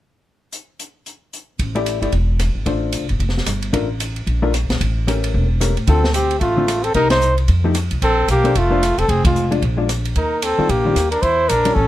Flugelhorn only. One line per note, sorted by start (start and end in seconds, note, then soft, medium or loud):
5.89 6.13 A4 medium
6.15 6.40 G4 medium
6.41 6.85 F4 medium
6.84 6.94 A4 medium
6.95 7.10 A#4 medium
7.11 7.36 C5 medium
8.04 8.28 A4 medium
8.31 8.59 G4 medium
8.57 9.00 F4 medium
8.99 9.11 A4 medium
9.10 9.25 G#4 medium
9.26 9.50 F4 medium
10.17 10.45 A#4 medium
10.44 10.72 A4 medium
10.70 11.11 G4 medium
11.11 11.23 A#4 medium
11.22 11.50 C5 medium
11.49 11.76 A#4 medium
11.74 11.88 A4 medium